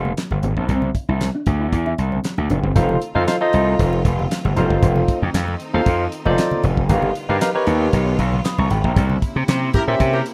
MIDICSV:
0, 0, Header, 1, 8, 480
1, 0, Start_track
1, 0, Tempo, 517241
1, 639, Time_signature, 4, 2, 24, 8
1, 9593, End_track
2, 0, Start_track
2, 0, Title_t, "Tine electric piano"
2, 0, Program_c, 0, 4
2, 2556, Note_on_c, 0, 63, 84
2, 2557, Note_on_c, 0, 65, 85
2, 2560, Note_on_c, 0, 69, 83
2, 2561, Note_on_c, 0, 72, 81
2, 2562, Note_on_c, 0, 77, 96
2, 2770, Note_off_c, 0, 63, 0
2, 2771, Note_off_c, 0, 65, 0
2, 2772, Note_off_c, 0, 69, 0
2, 2773, Note_off_c, 0, 72, 0
2, 2773, Note_off_c, 0, 77, 0
2, 2922, Note_on_c, 0, 63, 111
2, 2923, Note_on_c, 0, 65, 100
2, 2925, Note_on_c, 0, 69, 92
2, 2928, Note_on_c, 0, 72, 90
2, 2929, Note_on_c, 0, 77, 119
2, 2990, Note_off_c, 0, 63, 0
2, 2991, Note_off_c, 0, 65, 0
2, 2992, Note_off_c, 0, 69, 0
2, 2993, Note_off_c, 0, 72, 0
2, 2994, Note_off_c, 0, 77, 0
2, 3036, Note_on_c, 0, 63, 90
2, 3037, Note_on_c, 0, 65, 88
2, 3039, Note_on_c, 0, 69, 82
2, 3041, Note_on_c, 0, 72, 86
2, 3043, Note_on_c, 0, 77, 107
2, 3112, Note_off_c, 0, 63, 0
2, 3113, Note_off_c, 0, 65, 0
2, 3114, Note_off_c, 0, 69, 0
2, 3115, Note_off_c, 0, 72, 0
2, 3116, Note_off_c, 0, 77, 0
2, 3163, Note_on_c, 0, 63, 103
2, 3165, Note_on_c, 0, 65, 95
2, 3167, Note_on_c, 0, 69, 90
2, 3169, Note_on_c, 0, 72, 80
2, 3171, Note_on_c, 0, 75, 108
2, 3722, Note_off_c, 0, 63, 0
2, 3722, Note_off_c, 0, 65, 0
2, 3724, Note_off_c, 0, 69, 0
2, 3725, Note_off_c, 0, 72, 0
2, 3726, Note_off_c, 0, 75, 0
2, 4236, Note_on_c, 0, 63, 90
2, 4238, Note_on_c, 0, 65, 90
2, 4239, Note_on_c, 0, 69, 86
2, 4242, Note_on_c, 0, 72, 89
2, 4244, Note_on_c, 0, 77, 102
2, 4804, Note_off_c, 0, 63, 0
2, 4805, Note_off_c, 0, 65, 0
2, 4806, Note_off_c, 0, 69, 0
2, 4807, Note_off_c, 0, 72, 0
2, 4808, Note_off_c, 0, 77, 0
2, 5323, Note_on_c, 0, 63, 94
2, 5325, Note_on_c, 0, 65, 85
2, 5327, Note_on_c, 0, 69, 92
2, 5328, Note_on_c, 0, 72, 92
2, 5331, Note_on_c, 0, 77, 121
2, 5603, Note_off_c, 0, 63, 0
2, 5604, Note_off_c, 0, 65, 0
2, 5605, Note_off_c, 0, 69, 0
2, 5606, Note_off_c, 0, 72, 0
2, 5607, Note_off_c, 0, 77, 0
2, 5805, Note_on_c, 0, 63, 112
2, 5806, Note_on_c, 0, 65, 91
2, 5807, Note_on_c, 0, 69, 98
2, 5810, Note_on_c, 0, 72, 97
2, 5811, Note_on_c, 0, 74, 109
2, 6150, Note_off_c, 0, 63, 0
2, 6151, Note_off_c, 0, 65, 0
2, 6151, Note_off_c, 0, 69, 0
2, 6153, Note_off_c, 0, 72, 0
2, 6153, Note_off_c, 0, 74, 0
2, 6396, Note_on_c, 0, 63, 94
2, 6397, Note_on_c, 0, 67, 77
2, 6400, Note_on_c, 0, 70, 77
2, 6401, Note_on_c, 0, 71, 78
2, 6402, Note_on_c, 0, 77, 93
2, 6610, Note_off_c, 0, 63, 0
2, 6611, Note_off_c, 0, 67, 0
2, 6612, Note_off_c, 0, 70, 0
2, 6613, Note_off_c, 0, 71, 0
2, 6613, Note_off_c, 0, 77, 0
2, 6763, Note_on_c, 0, 63, 105
2, 6765, Note_on_c, 0, 67, 95
2, 6768, Note_on_c, 0, 70, 98
2, 6769, Note_on_c, 0, 71, 100
2, 6771, Note_on_c, 0, 77, 108
2, 6831, Note_off_c, 0, 63, 0
2, 6832, Note_off_c, 0, 67, 0
2, 6833, Note_off_c, 0, 70, 0
2, 6834, Note_off_c, 0, 71, 0
2, 6835, Note_off_c, 0, 77, 0
2, 6877, Note_on_c, 0, 63, 99
2, 6878, Note_on_c, 0, 67, 76
2, 6881, Note_on_c, 0, 70, 90
2, 6882, Note_on_c, 0, 71, 83
2, 6884, Note_on_c, 0, 77, 100
2, 6953, Note_off_c, 0, 63, 0
2, 6953, Note_off_c, 0, 67, 0
2, 6955, Note_off_c, 0, 70, 0
2, 6955, Note_off_c, 0, 71, 0
2, 6956, Note_off_c, 0, 77, 0
2, 7003, Note_on_c, 0, 63, 87
2, 7005, Note_on_c, 0, 67, 89
2, 7007, Note_on_c, 0, 70, 83
2, 7009, Note_on_c, 0, 71, 99
2, 7010, Note_on_c, 0, 73, 105
2, 7562, Note_off_c, 0, 63, 0
2, 7563, Note_off_c, 0, 67, 0
2, 7564, Note_off_c, 0, 70, 0
2, 7564, Note_off_c, 0, 71, 0
2, 7565, Note_off_c, 0, 73, 0
2, 7839, Note_on_c, 0, 87, 59
2, 7845, Note_on_c, 0, 83, 55
2, 7960, Note_off_c, 0, 87, 0
2, 7963, Note_off_c, 0, 83, 0
2, 7968, Note_on_c, 0, 85, 79
2, 7973, Note_on_c, 0, 82, 65
2, 8075, Note_off_c, 0, 85, 0
2, 8077, Note_off_c, 0, 82, 0
2, 8080, Note_on_c, 0, 83, 69
2, 8085, Note_on_c, 0, 79, 54
2, 8200, Note_off_c, 0, 83, 0
2, 8201, Note_off_c, 0, 79, 0
2, 8207, Note_on_c, 0, 82, 63
2, 8212, Note_on_c, 0, 79, 52
2, 8435, Note_off_c, 0, 82, 0
2, 8438, Note_off_c, 0, 79, 0
2, 9164, Note_on_c, 0, 61, 93
2, 9166, Note_on_c, 0, 67, 90
2, 9167, Note_on_c, 0, 70, 92
2, 9169, Note_on_c, 0, 72, 90
2, 9171, Note_on_c, 0, 76, 107
2, 9444, Note_off_c, 0, 61, 0
2, 9445, Note_off_c, 0, 67, 0
2, 9445, Note_off_c, 0, 70, 0
2, 9446, Note_off_c, 0, 72, 0
2, 9447, Note_off_c, 0, 76, 0
2, 9593, End_track
3, 0, Start_track
3, 0, Title_t, "Horn section"
3, 0, Program_c, 1, 61
3, 9037, Note_on_c, 1, 64, 95
3, 9037, Note_on_c, 1, 67, 91
3, 9037, Note_on_c, 1, 70, 109
3, 9119, Note_off_c, 1, 64, 0
3, 9119, Note_off_c, 1, 67, 0
3, 9119, Note_off_c, 1, 70, 0
3, 9405, Note_on_c, 1, 70, 98
3, 9406, Note_on_c, 1, 64, 90
3, 9406, Note_on_c, 1, 67, 101
3, 9502, Note_off_c, 1, 64, 0
3, 9502, Note_off_c, 1, 67, 0
3, 9502, Note_off_c, 1, 70, 0
3, 9593, End_track
4, 0, Start_track
4, 0, Title_t, "Clean electric guitar"
4, 0, Program_c, 2, 27
4, 46, Note_on_c, 2, 58, 73
4, 135, Note_off_c, 2, 58, 0
4, 398, Note_on_c, 2, 59, 65
4, 499, Note_off_c, 2, 59, 0
4, 526, Note_on_c, 2, 60, 56
4, 615, Note_off_c, 2, 60, 0
4, 640, Note_on_c, 2, 60, 71
4, 740, Note_off_c, 2, 60, 0
4, 1009, Note_on_c, 2, 64, 83
4, 1097, Note_off_c, 2, 64, 0
4, 1249, Note_on_c, 2, 62, 67
4, 1337, Note_off_c, 2, 62, 0
4, 1488, Note_on_c, 2, 64, 58
4, 1576, Note_off_c, 2, 64, 0
4, 1727, Note_on_c, 2, 64, 66
4, 1816, Note_off_c, 2, 64, 0
4, 1967, Note_on_c, 2, 60, 68
4, 2056, Note_off_c, 2, 60, 0
4, 2321, Note_on_c, 2, 62, 68
4, 2421, Note_off_c, 2, 62, 0
4, 2449, Note_on_c, 2, 60, 73
4, 2537, Note_off_c, 2, 60, 0
4, 9593, End_track
5, 0, Start_track
5, 0, Title_t, "String section"
5, 0, Program_c, 3, 48
5, 2558, Note_on_c, 3, 65, 94
5, 2559, Note_on_c, 3, 57, 75
5, 2559, Note_on_c, 3, 60, 76
5, 2561, Note_on_c, 3, 51, 89
5, 4460, Note_off_c, 3, 65, 0
5, 4479, Note_on_c, 3, 63, 94
5, 6362, Note_off_c, 3, 57, 0
5, 6362, Note_off_c, 3, 60, 0
5, 6363, Note_off_c, 3, 51, 0
5, 6380, Note_off_c, 3, 63, 0
5, 6399, Note_on_c, 3, 59, 83
5, 6400, Note_on_c, 3, 55, 75
5, 6400, Note_on_c, 3, 65, 107
5, 6401, Note_on_c, 3, 51, 93
5, 8300, Note_off_c, 3, 59, 0
5, 8301, Note_off_c, 3, 51, 0
5, 8301, Note_off_c, 3, 55, 0
5, 8301, Note_off_c, 3, 65, 0
5, 8317, Note_on_c, 3, 58, 83
5, 8319, Note_on_c, 3, 48, 83
5, 8319, Note_on_c, 3, 64, 101
5, 8320, Note_on_c, 3, 49, 84
5, 9593, Note_off_c, 3, 48, 0
5, 9593, Note_off_c, 3, 49, 0
5, 9593, Note_off_c, 3, 58, 0
5, 9593, Note_off_c, 3, 64, 0
5, 9593, End_track
6, 0, Start_track
6, 0, Title_t, "Slap bass"
6, 0, Program_c, 4, 36
6, 0, Note_on_c, 4, 29, 92
6, 107, Note_off_c, 4, 29, 0
6, 288, Note_on_c, 4, 31, 86
6, 376, Note_off_c, 4, 31, 0
6, 401, Note_on_c, 4, 32, 90
6, 500, Note_off_c, 4, 32, 0
6, 526, Note_on_c, 4, 34, 72
6, 615, Note_off_c, 4, 34, 0
6, 640, Note_on_c, 4, 36, 82
6, 828, Note_off_c, 4, 36, 0
6, 1007, Note_on_c, 4, 36, 97
6, 1195, Note_off_c, 4, 36, 0
6, 1361, Note_on_c, 4, 38, 78
6, 1549, Note_off_c, 4, 38, 0
6, 1600, Note_on_c, 4, 40, 77
6, 1788, Note_off_c, 4, 40, 0
6, 1840, Note_on_c, 4, 36, 92
6, 2028, Note_off_c, 4, 36, 0
6, 2208, Note_on_c, 4, 38, 93
6, 2296, Note_off_c, 4, 38, 0
6, 2321, Note_on_c, 4, 29, 82
6, 2420, Note_off_c, 4, 29, 0
6, 2446, Note_on_c, 4, 31, 88
6, 2534, Note_off_c, 4, 31, 0
6, 2559, Note_on_c, 4, 29, 91
6, 2747, Note_off_c, 4, 29, 0
6, 2927, Note_on_c, 4, 41, 103
6, 3015, Note_off_c, 4, 41, 0
6, 3282, Note_on_c, 4, 36, 102
6, 3469, Note_off_c, 4, 36, 0
6, 3520, Note_on_c, 4, 29, 93
6, 3708, Note_off_c, 4, 29, 0
6, 3758, Note_on_c, 4, 29, 100
6, 3947, Note_off_c, 4, 29, 0
6, 4126, Note_on_c, 4, 31, 110
6, 4215, Note_off_c, 4, 31, 0
6, 4240, Note_on_c, 4, 29, 93
6, 4340, Note_off_c, 4, 29, 0
6, 4365, Note_on_c, 4, 31, 93
6, 4454, Note_off_c, 4, 31, 0
6, 4479, Note_on_c, 4, 29, 97
6, 4667, Note_off_c, 4, 29, 0
6, 4847, Note_on_c, 4, 41, 114
6, 4935, Note_off_c, 4, 41, 0
6, 4957, Note_on_c, 4, 41, 103
6, 5146, Note_off_c, 4, 41, 0
6, 5327, Note_on_c, 4, 39, 100
6, 5415, Note_off_c, 4, 39, 0
6, 5441, Note_on_c, 4, 41, 90
6, 5628, Note_off_c, 4, 41, 0
6, 5808, Note_on_c, 4, 29, 99
6, 5896, Note_off_c, 4, 29, 0
6, 6160, Note_on_c, 4, 29, 103
6, 6348, Note_off_c, 4, 29, 0
6, 6398, Note_on_c, 4, 31, 108
6, 6587, Note_off_c, 4, 31, 0
6, 6767, Note_on_c, 4, 43, 95
6, 6855, Note_off_c, 4, 43, 0
6, 7118, Note_on_c, 4, 39, 107
6, 7307, Note_off_c, 4, 39, 0
6, 7362, Note_on_c, 4, 35, 103
6, 7549, Note_off_c, 4, 35, 0
6, 7599, Note_on_c, 4, 35, 93
6, 7787, Note_off_c, 4, 35, 0
6, 7967, Note_on_c, 4, 36, 110
6, 8055, Note_off_c, 4, 36, 0
6, 8079, Note_on_c, 4, 32, 102
6, 8179, Note_off_c, 4, 32, 0
6, 8206, Note_on_c, 4, 34, 107
6, 8295, Note_off_c, 4, 34, 0
6, 8319, Note_on_c, 4, 36, 89
6, 8507, Note_off_c, 4, 36, 0
6, 8685, Note_on_c, 4, 48, 111
6, 8774, Note_off_c, 4, 48, 0
6, 8801, Note_on_c, 4, 48, 119
6, 8989, Note_off_c, 4, 48, 0
6, 9165, Note_on_c, 4, 46, 82
6, 9254, Note_off_c, 4, 46, 0
6, 9281, Note_on_c, 4, 48, 94
6, 9469, Note_off_c, 4, 48, 0
6, 9593, End_track
7, 0, Start_track
7, 0, Title_t, "Muted clean electric guitar strokes"
7, 159, Note_on_c, 9, 29, 43
7, 252, Note_off_c, 9, 29, 0
7, 880, Note_on_c, 9, 29, 45
7, 973, Note_off_c, 9, 29, 0
7, 1359, Note_on_c, 9, 29, 42
7, 1452, Note_off_c, 9, 29, 0
7, 1841, Note_on_c, 9, 29, 43
7, 1934, Note_off_c, 9, 29, 0
7, 2082, Note_on_c, 9, 29, 43
7, 2175, Note_off_c, 9, 29, 0
7, 9593, End_track
8, 0, Start_track
8, 0, Title_t, "Drums"
8, 47, Note_on_c, 9, 63, 68
8, 139, Note_off_c, 9, 63, 0
8, 161, Note_on_c, 9, 42, 101
8, 169, Note_on_c, 9, 38, 104
8, 169, Note_on_c, 9, 39, 80
8, 254, Note_off_c, 9, 42, 0
8, 261, Note_off_c, 9, 38, 0
8, 262, Note_off_c, 9, 39, 0
8, 286, Note_on_c, 9, 62, 34
8, 286, Note_on_c, 9, 63, 71
8, 378, Note_off_c, 9, 62, 0
8, 378, Note_off_c, 9, 63, 0
8, 397, Note_on_c, 9, 42, 67
8, 401, Note_on_c, 9, 64, 79
8, 490, Note_off_c, 9, 42, 0
8, 493, Note_off_c, 9, 64, 0
8, 526, Note_on_c, 9, 36, 83
8, 619, Note_off_c, 9, 36, 0
8, 637, Note_on_c, 9, 62, 30
8, 637, Note_on_c, 9, 64, 65
8, 639, Note_on_c, 9, 36, 84
8, 640, Note_on_c, 9, 42, 82
8, 729, Note_off_c, 9, 62, 0
8, 729, Note_off_c, 9, 64, 0
8, 732, Note_off_c, 9, 36, 0
8, 733, Note_off_c, 9, 42, 0
8, 760, Note_on_c, 9, 62, 29
8, 760, Note_on_c, 9, 63, 72
8, 853, Note_off_c, 9, 62, 0
8, 853, Note_off_c, 9, 63, 0
8, 879, Note_on_c, 9, 36, 91
8, 881, Note_on_c, 9, 42, 75
8, 972, Note_off_c, 9, 36, 0
8, 974, Note_off_c, 9, 42, 0
8, 1012, Note_on_c, 9, 63, 42
8, 1105, Note_off_c, 9, 63, 0
8, 1119, Note_on_c, 9, 62, 34
8, 1120, Note_on_c, 9, 42, 98
8, 1126, Note_on_c, 9, 38, 105
8, 1127, Note_on_c, 9, 39, 84
8, 1211, Note_off_c, 9, 62, 0
8, 1213, Note_off_c, 9, 42, 0
8, 1219, Note_off_c, 9, 38, 0
8, 1220, Note_off_c, 9, 39, 0
8, 1355, Note_on_c, 9, 42, 77
8, 1361, Note_on_c, 9, 36, 94
8, 1361, Note_on_c, 9, 64, 65
8, 1447, Note_off_c, 9, 42, 0
8, 1453, Note_off_c, 9, 36, 0
8, 1454, Note_off_c, 9, 64, 0
8, 1601, Note_on_c, 9, 36, 101
8, 1601, Note_on_c, 9, 42, 85
8, 1694, Note_off_c, 9, 36, 0
8, 1694, Note_off_c, 9, 42, 0
8, 1727, Note_on_c, 9, 62, 34
8, 1819, Note_off_c, 9, 62, 0
8, 1841, Note_on_c, 9, 42, 85
8, 1934, Note_off_c, 9, 42, 0
8, 1969, Note_on_c, 9, 63, 65
8, 2062, Note_off_c, 9, 63, 0
8, 2076, Note_on_c, 9, 62, 33
8, 2081, Note_on_c, 9, 42, 105
8, 2089, Note_on_c, 9, 38, 100
8, 2090, Note_on_c, 9, 39, 83
8, 2168, Note_off_c, 9, 62, 0
8, 2174, Note_off_c, 9, 42, 0
8, 2182, Note_off_c, 9, 38, 0
8, 2183, Note_off_c, 9, 39, 0
8, 2208, Note_on_c, 9, 63, 74
8, 2301, Note_off_c, 9, 63, 0
8, 2317, Note_on_c, 9, 42, 67
8, 2321, Note_on_c, 9, 64, 76
8, 2410, Note_off_c, 9, 42, 0
8, 2414, Note_off_c, 9, 64, 0
8, 2446, Note_on_c, 9, 36, 76
8, 2539, Note_off_c, 9, 36, 0
8, 2559, Note_on_c, 9, 36, 101
8, 2559, Note_on_c, 9, 42, 104
8, 2560, Note_on_c, 9, 64, 76
8, 2651, Note_off_c, 9, 36, 0
8, 2652, Note_off_c, 9, 42, 0
8, 2652, Note_off_c, 9, 64, 0
8, 2682, Note_on_c, 9, 62, 33
8, 2682, Note_on_c, 9, 63, 75
8, 2775, Note_off_c, 9, 62, 0
8, 2775, Note_off_c, 9, 63, 0
8, 2799, Note_on_c, 9, 42, 84
8, 2892, Note_off_c, 9, 42, 0
8, 2933, Note_on_c, 9, 63, 49
8, 3026, Note_off_c, 9, 63, 0
8, 3040, Note_on_c, 9, 42, 92
8, 3041, Note_on_c, 9, 62, 38
8, 3046, Note_on_c, 9, 38, 125
8, 3047, Note_on_c, 9, 39, 85
8, 3133, Note_off_c, 9, 42, 0
8, 3134, Note_off_c, 9, 62, 0
8, 3139, Note_off_c, 9, 38, 0
8, 3140, Note_off_c, 9, 39, 0
8, 3275, Note_on_c, 9, 42, 80
8, 3368, Note_off_c, 9, 42, 0
8, 3520, Note_on_c, 9, 42, 86
8, 3521, Note_on_c, 9, 36, 113
8, 3613, Note_off_c, 9, 42, 0
8, 3614, Note_off_c, 9, 36, 0
8, 3645, Note_on_c, 9, 62, 39
8, 3738, Note_off_c, 9, 62, 0
8, 3759, Note_on_c, 9, 36, 93
8, 3760, Note_on_c, 9, 42, 96
8, 3851, Note_off_c, 9, 36, 0
8, 3853, Note_off_c, 9, 42, 0
8, 3889, Note_on_c, 9, 63, 83
8, 3982, Note_off_c, 9, 63, 0
8, 4001, Note_on_c, 9, 42, 107
8, 4008, Note_on_c, 9, 38, 127
8, 4009, Note_on_c, 9, 39, 93
8, 4094, Note_off_c, 9, 42, 0
8, 4101, Note_off_c, 9, 38, 0
8, 4102, Note_off_c, 9, 39, 0
8, 4129, Note_on_c, 9, 63, 84
8, 4222, Note_off_c, 9, 63, 0
8, 4237, Note_on_c, 9, 42, 79
8, 4242, Note_on_c, 9, 64, 89
8, 4329, Note_off_c, 9, 42, 0
8, 4335, Note_off_c, 9, 64, 0
8, 4366, Note_on_c, 9, 36, 94
8, 4459, Note_off_c, 9, 36, 0
8, 4478, Note_on_c, 9, 42, 101
8, 4479, Note_on_c, 9, 36, 106
8, 4479, Note_on_c, 9, 62, 34
8, 4479, Note_on_c, 9, 64, 67
8, 4571, Note_off_c, 9, 42, 0
8, 4572, Note_off_c, 9, 36, 0
8, 4572, Note_off_c, 9, 62, 0
8, 4572, Note_off_c, 9, 64, 0
8, 4600, Note_on_c, 9, 63, 75
8, 4693, Note_off_c, 9, 63, 0
8, 4718, Note_on_c, 9, 36, 104
8, 4719, Note_on_c, 9, 42, 81
8, 4811, Note_off_c, 9, 36, 0
8, 4812, Note_off_c, 9, 42, 0
8, 4853, Note_on_c, 9, 63, 47
8, 4946, Note_off_c, 9, 63, 0
8, 4957, Note_on_c, 9, 42, 103
8, 4963, Note_on_c, 9, 38, 123
8, 4964, Note_on_c, 9, 39, 100
8, 5050, Note_off_c, 9, 42, 0
8, 5056, Note_off_c, 9, 38, 0
8, 5056, Note_off_c, 9, 39, 0
8, 5084, Note_on_c, 9, 62, 38
8, 5177, Note_off_c, 9, 62, 0
8, 5194, Note_on_c, 9, 42, 76
8, 5287, Note_off_c, 9, 42, 0
8, 5440, Note_on_c, 9, 42, 81
8, 5441, Note_on_c, 9, 36, 127
8, 5441, Note_on_c, 9, 62, 34
8, 5532, Note_off_c, 9, 42, 0
8, 5533, Note_off_c, 9, 62, 0
8, 5534, Note_off_c, 9, 36, 0
8, 5680, Note_on_c, 9, 42, 98
8, 5773, Note_off_c, 9, 42, 0
8, 5806, Note_on_c, 9, 63, 81
8, 5899, Note_off_c, 9, 63, 0
8, 5921, Note_on_c, 9, 42, 112
8, 5929, Note_on_c, 9, 38, 110
8, 5929, Note_on_c, 9, 39, 92
8, 6014, Note_off_c, 9, 42, 0
8, 6021, Note_off_c, 9, 38, 0
8, 6022, Note_off_c, 9, 39, 0
8, 6045, Note_on_c, 9, 62, 36
8, 6045, Note_on_c, 9, 63, 81
8, 6138, Note_off_c, 9, 62, 0
8, 6138, Note_off_c, 9, 63, 0
8, 6157, Note_on_c, 9, 42, 77
8, 6158, Note_on_c, 9, 64, 88
8, 6250, Note_off_c, 9, 42, 0
8, 6251, Note_off_c, 9, 64, 0
8, 6286, Note_on_c, 9, 36, 99
8, 6379, Note_off_c, 9, 36, 0
8, 6396, Note_on_c, 9, 62, 35
8, 6396, Note_on_c, 9, 64, 75
8, 6398, Note_on_c, 9, 42, 102
8, 6399, Note_on_c, 9, 36, 106
8, 6489, Note_off_c, 9, 62, 0
8, 6489, Note_off_c, 9, 64, 0
8, 6491, Note_off_c, 9, 42, 0
8, 6492, Note_off_c, 9, 36, 0
8, 6518, Note_on_c, 9, 62, 31
8, 6518, Note_on_c, 9, 63, 80
8, 6611, Note_off_c, 9, 62, 0
8, 6611, Note_off_c, 9, 63, 0
8, 6639, Note_on_c, 9, 42, 86
8, 6731, Note_off_c, 9, 42, 0
8, 6772, Note_on_c, 9, 63, 50
8, 6865, Note_off_c, 9, 63, 0
8, 6878, Note_on_c, 9, 42, 113
8, 6884, Note_on_c, 9, 38, 119
8, 6885, Note_on_c, 9, 39, 98
8, 6971, Note_off_c, 9, 42, 0
8, 6977, Note_off_c, 9, 38, 0
8, 6977, Note_off_c, 9, 39, 0
8, 7114, Note_on_c, 9, 42, 85
8, 7207, Note_off_c, 9, 42, 0
8, 7359, Note_on_c, 9, 42, 90
8, 7361, Note_on_c, 9, 36, 113
8, 7452, Note_off_c, 9, 42, 0
8, 7454, Note_off_c, 9, 36, 0
8, 7599, Note_on_c, 9, 36, 91
8, 7600, Note_on_c, 9, 42, 90
8, 7692, Note_off_c, 9, 36, 0
8, 7693, Note_off_c, 9, 42, 0
8, 7727, Note_on_c, 9, 63, 72
8, 7820, Note_off_c, 9, 63, 0
8, 7834, Note_on_c, 9, 62, 37
8, 7839, Note_on_c, 9, 42, 104
8, 7847, Note_on_c, 9, 38, 118
8, 7848, Note_on_c, 9, 39, 87
8, 7926, Note_off_c, 9, 62, 0
8, 7932, Note_off_c, 9, 42, 0
8, 7940, Note_off_c, 9, 38, 0
8, 7941, Note_off_c, 9, 39, 0
8, 7964, Note_on_c, 9, 63, 78
8, 8057, Note_off_c, 9, 63, 0
8, 8076, Note_on_c, 9, 42, 74
8, 8079, Note_on_c, 9, 64, 84
8, 8169, Note_off_c, 9, 42, 0
8, 8172, Note_off_c, 9, 64, 0
8, 8206, Note_on_c, 9, 36, 103
8, 8299, Note_off_c, 9, 36, 0
8, 8319, Note_on_c, 9, 36, 108
8, 8319, Note_on_c, 9, 42, 88
8, 8319, Note_on_c, 9, 62, 36
8, 8319, Note_on_c, 9, 64, 78
8, 8412, Note_off_c, 9, 36, 0
8, 8412, Note_off_c, 9, 42, 0
8, 8412, Note_off_c, 9, 62, 0
8, 8412, Note_off_c, 9, 64, 0
8, 8440, Note_on_c, 9, 63, 83
8, 8533, Note_off_c, 9, 63, 0
8, 8558, Note_on_c, 9, 36, 104
8, 8559, Note_on_c, 9, 42, 87
8, 8651, Note_off_c, 9, 36, 0
8, 8651, Note_off_c, 9, 42, 0
8, 8692, Note_on_c, 9, 63, 46
8, 8785, Note_off_c, 9, 63, 0
8, 8799, Note_on_c, 9, 42, 114
8, 8799, Note_on_c, 9, 62, 39
8, 8805, Note_on_c, 9, 38, 119
8, 8806, Note_on_c, 9, 39, 100
8, 8892, Note_off_c, 9, 42, 0
8, 8892, Note_off_c, 9, 62, 0
8, 8898, Note_off_c, 9, 38, 0
8, 8899, Note_off_c, 9, 39, 0
8, 9035, Note_on_c, 9, 42, 84
8, 9040, Note_on_c, 9, 36, 100
8, 9041, Note_on_c, 9, 64, 79
8, 9128, Note_off_c, 9, 42, 0
8, 9133, Note_off_c, 9, 36, 0
8, 9133, Note_off_c, 9, 64, 0
8, 9279, Note_on_c, 9, 62, 37
8, 9281, Note_on_c, 9, 36, 117
8, 9281, Note_on_c, 9, 42, 95
8, 9371, Note_off_c, 9, 62, 0
8, 9374, Note_off_c, 9, 36, 0
8, 9374, Note_off_c, 9, 42, 0
8, 9405, Note_on_c, 9, 62, 39
8, 9498, Note_off_c, 9, 62, 0
8, 9519, Note_on_c, 9, 42, 93
8, 9593, Note_off_c, 9, 42, 0
8, 9593, End_track
0, 0, End_of_file